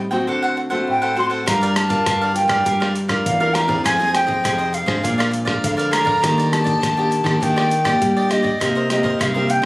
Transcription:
Already playing: nylon-string guitar A2
0.11 nylon-string guitar A3 C4 F#4, cavaquinho C5 D#5 G5
0.27 nylon-string guitar D3, cavaquinho D4 A4 C5 F#5
0.42 cavaquinho A4 C5 F#5
0.57 muted cavaquinho stroke
0.70 nylon-string guitar A3 C4 F#4, cavaquinho A4 C5 F#5
0.87 nylon-string guitar A2, flute G5
1.02 cavaquinho A4 C5 F#5
1.15 nylon-string guitar A3 C4 F#4, cavaquinho D4 A4 C5 F#5, flute C6
1.30 cavaquinho A4 C5 F#5
1.46 nylon-string guitar G2 G3 D4 F4 A#4, cavaquinho G4 A#4 D5 F5, flute A#5, kick, cross-stick, closed hi-hat
1.61 cavaquinho A#4 D5 F5, closed hi-hat
1.70 flute A#5
1.76 flute A5, cross-stick, closed hi-hat
1.89 nylon-string guitar D4 F4 A#4, cavaquinho A#4 D5 F5, kick, closed hi-hat
2.06 nylon-string guitar G2 D3, cavaquinho G4 A#4 D5 F5, kick, cross-stick, closed hi-hat
2.21 cavaquinho A#4 D5 F5
2.35 nylon-string guitar D4 F4 A#4, flute G5, muted cavaquinho stroke, closed hi-hat
2.48 nylon-string guitar G2, cavaquinho A#4 D5 F5, kick, cross-stick, closed hi-hat
2.65 nylon-string guitar G3 D4 F4 A#4, cavaquinho G4 A#4 D5 F5, kick, closed hi-hat
2.80 cavaquinho A#4 D5 F5, cross-stick
2.95 muted cavaquinho stroke, closed hi-hat
3.08 nylon-string guitar D4 F4 A#4, cavaquinho A#4 D5 F5, kick, cross-stick, closed hi-hat
3.25 nylon-string guitar E2 D3, flute F5, kick, closed hi-hat
3.40 nylon-string guitar D4 F4 A#4, cavaquinho A#4 D5 F5
3.54 cavaquinho G4 A#4 D5 F5, flute A#5, cross-stick, closed hi-hat
3.68 nylon-string guitar C4 D#4 G#4, cavaquinho A#4 D5 F5, kick
3.84 nylon-string guitar F2 F3, cavaquinho F4 G#4 C5 D#5, flute G#5, kick, cross-stick, closed hi-hat
3.99 nylon-string guitar C4 D#4 G#4, cavaquinho G#4 C5 D#5
4.15 flute G5, cross-stick, closed hi-hat
4.27 nylon-string guitar C4 D#4 G#4, cavaquinho G#4 C5 D#5, kick
4.44 nylon-string guitar F2 C3 C4 D#4 G#4, cavaquinho F4 G#4 C5 D#5, kick, cross-stick, closed hi-hat
4.58 cavaquinho G#4 C5 D#5
4.73 flute F5, muted cavaquinho stroke, closed hi-hat
4.86 nylon-string guitar G#2 F3 G#3 D4, cavaquinho G#4 C5 D#5, kick, cross-stick
5.03 nylon-string guitar A#2, cavaquinho G#4 A#4 D5 F5, kick, closed hi-hat
5.18 cavaquinho A#4 D5 F5, cross-stick, closed hi-hat
5.31 muted cavaquinho stroke, closed hi-hat
5.45 nylon-string guitar F3 G#3 D4, cavaquinho A#4 D5 F5, kick, cross-stick
5.64 nylon-string guitar F2 D3, flute F5, kick, closed hi-hat
5.77 cavaquinho A#4 D5 F5, closed hi-hat
5.91 nylon-string guitar F3 G#3 D4, cavaquinho G#4 A#4 D5 F5, flute A#5, cross-stick, closed hi-hat
6.05 cavaquinho A#4 D5 F5, kick
6.22 nylon-string guitar D#3 A#3 D4 G4, cavaquinho D4 G4 D5 D#5, kick, cross-stick, closed hi-hat
6.38 cavaquinho G4 D5 D#5, closed hi-hat
6.52 nylon-string guitar A#3 D4 G4, flute A5, cross-stick, closed hi-hat
6.64 cavaquinho G4 D5 D#5, kick, closed hi-hat
6.81 nylon-string guitar A#2 D#3, cavaquinho D4 G4 D5 D#5, kick, cross-stick, closed hi-hat
6.97 nylon-string guitar A#3 D4 G4, cavaquinho G4 D5 D#5
7.11 muted cavaquinho stroke, closed hi-hat
7.24 nylon-string guitar D#3 A#3 D4 G4, cavaquinho G4 D5 D#5, kick, cross-stick, closed hi-hat
7.40 nylon-string guitar D#3 A#3 D4 G4, cavaquinho D4 G4 D5 D#5, flute G5, kick, closed hi-hat
7.56 cavaquinho G4 D5 D#5, cross-stick
7.70 muted cavaquinho stroke, closed hi-hat
7.85 nylon-string guitar A#3 D4 G4, cavaquinho G4 D5 D#5, kick, cross-stick, closed hi-hat
8.02 nylon-string guitar A#2 G3, kick, closed hi-hat
8.17 cavaquinho G4 D5 D#5
8.29 nylon-string guitar A#3 D4 G4, cavaquinho D4 G4 D5 D#5, flute D#5, cross-stick, closed hi-hat
8.43 cavaquinho G4 D5 D#5, kick
8.60 nylon-string guitar C3 A#3 D#4 G4, cavaquinho D#4 A#4 C5 D#5, kick, cross-stick, closed hi-hat
8.75 cavaquinho A#4 C5 D#5
8.90 nylon-string guitar A#3 D#4 G4, flute D#5, cross-stick, closed hi-hat
9.03 cavaquinho A#4 C5 D#5, kick
9.19 nylon-string guitar G2 C3, cavaquinho D#4 A#4 C5 D#5, flute F5, kick, cross-stick, closed hi-hat
9.34 nylon-string guitar A#3 D#4 G4, cavaquinho A#4 C5 D#5
9.48 flute G5, muted cavaquinho stroke, closed hi-hat
9.62 nylon-string guitar C3, cavaquinho D#5

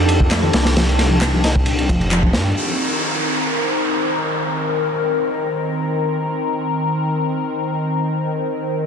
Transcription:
Already playing: detuned saw bass F2, analog synth pad D#3 D4 G4 A4
0.09 ride
0.20 kick
0.31 reed electric piano A3, snare, clap, ride
0.43 reed electric piano D#3
0.53 detuned saw bass C2, snare, ride
0.65 snare, ride
0.76 reed electric piano F3, snare, ride
0.89 ride
0.99 reed electric piano A3, snare, ride
1.11 reed electric piano F3
1.21 snare, clap, ride
1.33 reed electric piano F3
1.44 reed electric piano D#4, snare, ride
1.56 kick
1.66 ride
1.78 ride
1.89 detuned saw bass F1, reed electric piano F3, kick, ride
2.01 ride
2.11 reed electric piano F3, clap, ride
2.23 reed electric piano F3, kick
2.33 detuned saw bass G2, snare, ride
2.56 analog synth pad D#3 C4 A#4, downlifter

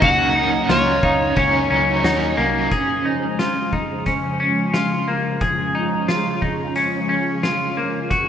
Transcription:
Already playing: string machine F#3 A#3 D#4
0.01 picked electric bass C#2, overdriven electric guitar C#3 F#3 C#4 D#4 A#4, clean electric guitar F#4, electric slide guitar F#5, kick, ride
0.34 clean electric guitar D#4, overdriven electric guitar D#4 A#4
0.39 overdriven electric guitar C#4
0.69 picked electric bass C#2, clean electric guitar F4, electric slide guitar C#5, snare, ride, tambourine
1.03 picked electric bass C#2, clean electric guitar D#4, celesta F5, kick
1.35 picked electric bass C#2, overdriven electric guitar C#3 F#3 C#4 D#4 A#4, clean electric guitar C#4, kick, ride
1.70 picked electric bass C#2, clean electric guitar C#4
2.03 picked electric bass D#2, overdriven electric guitar F#3 C#4 D#4, clean electric guitar D#4, celesta F#5, snare, ride, tambourine
2.08 overdriven electric guitar A#4
2.37 picked electric bass C2, clean electric guitar A#3
2.71 string machine C#3 F3 G#3 C5, clean electric guitar G#4, kick, closed hi-hat
3.05 clean electric guitar D#4
3.39 clean electric guitar F4, snare, closed hi-hat
3.73 clean electric guitar D#4, kick
4.06 clean electric guitar C#4, kick, closed hi-hat
4.40 clean electric guitar C#4
4.74 clean electric guitar F4, snare, closed hi-hat
5.08 clean electric guitar A#3
5.41 string machine C#4, clean electric guitar G#4, kick, closed hi-hat
5.75 clean electric guitar D#4
6.08 clean electric guitar F4, snare, closed hi-hat
6.42 clean electric guitar D#4, kick
6.76 clean electric guitar C#4, closed hi-hat
7.09 clean electric guitar C#4
7.43 clean electric guitar F4, snare, closed hi-hat
7.77 clean electric guitar A#3
8.10 string machine C#3 F#3 A#3 D#4, clean electric guitar F#4, kick, closed hi-hat

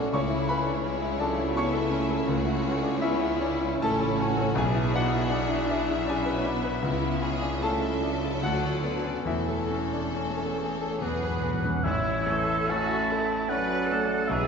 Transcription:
Already playing: double bass section B1, cello section B2, viola section A3, grand piano C#4 D4 E4 A4 D5 A5 D6, violin section F#4 C#5
0.12 double bass section C#2, grand piano C#2 C#5 C#6, cello section C#3, viola section A3, violin section E4 C#5
0.30 grand piano E4
0.49 grand piano C#4 B4 B5
0.66 grand piano D4
0.83 viola section G#3, grand piano C#4, violin section E4
1.01 grand piano E4
1.18 viola section F#3, grand piano D4 A4 A5
1.38 grand piano E4
1.54 viola section B3, grand piano C#4 C#6, violin section E4 E5
1.58 grand piano C#5
1.73 grand piano A4
1.90 viola section A3, grand piano C#4
2.10 grand piano A4
2.27 grand piano C#2, double bass section C#2, cello section C#3, viola section A3, violin section F#4 C#5
2.45 grand piano E4
2.63 grand piano C#4
2.83 grand piano D4
3.02 viola section B3, grand piano C#4 E4 E5, violin section E4
3.21 grand piano E4
3.41 viola section C#4, grand piano D4
3.61 grand piano E4
3.81 double bass section A1, cello section A2, grand piano C#4 A4 A5, viola section C#4, violin section E4 C#5
4.00 grand piano A4
4.20 grand piano C#4, violin section F#4
4.37 grand piano A4
4.55 grand piano B1 G#5, double bass section B1, cello section B2, violin section G#4 E5
4.59 viola section B3, grand piano G#4
4.74 grand piano E4
4.94 grand piano D4 F#4 F#5
5.12 grand piano E4
5.30 grand piano D4, viola section D4
5.49 grand piano E4
5.69 grand piano D4 E4 E5
5.88 grand piano E4
6.07 viola section C#4, grand piano D4 G#4 G#5, violin section E4
6.25 grand piano B4
6.44 viola section B3, grand piano D4
6.64 grand piano B4
6.82 grand piano C#2, double bass section C#2, cello section C#3, violin section E4
7.01 grand piano E4
7.22 grand piano C#4, violin section G#4
7.42 grand piano D4
7.62 viola section A3, grand piano C#4 A4 A5, violin section A4 E5
7.82 grand piano E4
8.01 viola section F#3, grand piano D4
8.22 grand piano E4
8.42 grand piano D2 F#4 F#5, double bass section D2, cello section D3, violin section D5
8.63 grand piano F#4
8.83 grand piano B3
9.04 grand piano C#4
9.25 double bass section E1, grand piano E2 E4 E5, cello section E2, viola section A3, violin section A4 C#5
9.48 grand piano A4
9.70 grand piano C#4
9.93 grand piano D4
10.14 grand piano C#4
10.37 grand piano A4
10.59 grand piano G#4
10.81 grand piano A4
11.01 double bass section E1, timpani E2, cello section E2, grand piano E2, french horn section F#3, viola section B3, violin section G#4 B4, flute B4, oboe F#5
11.08 timpani E2
11.16 timpani E2
11.24 timpani E2, grand piano B4
11.31 timpani E2
11.39 timpani E2
11.43 timpani E2, grand piano B3
11.55 timpani E2
11.62 timpani E2, grand piano C#4
11.70 timpani E2
11.82 double bass section A1, grand piano A1, french horn section E3, cello section E4, flute C#5, oboe E5
12.26 grand piano A3, cello section A4
12.69 french horn section A3, viola section C#4, grand piano C#4, violin section E4 A4, cello section F#4, flute E5, oboe A5
13.10 cello section E4, grand piano A4
13.49 french horn section F#3, viola section C#4, grand piano C#4, violin section E4 A4, cello section B4, flute D5, oboe F#5
13.89 grand piano A3, cello section A4
14.28 double bass section B1, grand piano B1, french horn section E3, cello section G#4, flute B4, oboe E5

